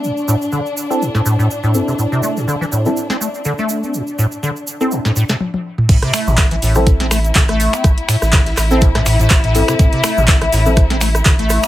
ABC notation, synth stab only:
X:1
M:4/4
L:1/16
Q:"Swing 16ths" 1/4=123
K:Am
V:1 name="Synth stab"
z6 z [CEA] z6 [CEA]2- | [CEA]6- [CEA] [CEA] z8 | z6 z [CEA] z8 | z6 z [CEA] z8 |
z6 z [CEA] z6 [CEA]2- | [CEA]6- [CEA] [CEA] z8 |]